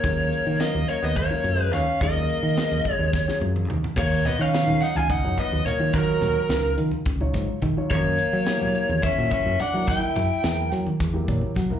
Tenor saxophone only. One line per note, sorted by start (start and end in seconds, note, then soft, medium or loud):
0.00 0.57 A#3 medium
0.60 0.86 A#3 medium
0.89 1.01 A#3 medium
1.02 1.15 B3 medium
1.18 1.58 A#3 medium
1.58 1.70 G#3 medium
1.74 2.00 C#4 medium
2.03 2.94 A#3 medium
2.94 3.39 G#3 medium
3.98 4.24 A#3 medium
4.27 4.42 B3 medium
4.41 4.82 C#4 medium
4.83 4.99 D#4 medium
4.97 5.11 F4 medium
5.10 5.38 D#4 medium
5.40 5.65 B3 medium
5.66 5.92 A#3 medium
5.96 6.76 F#3 medium
7.92 9.00 A#3 medium
9.06 9.31 C#4 medium
9.33 9.58 C#4 medium
9.61 9.87 D4 medium
9.91 10.70 E4 medium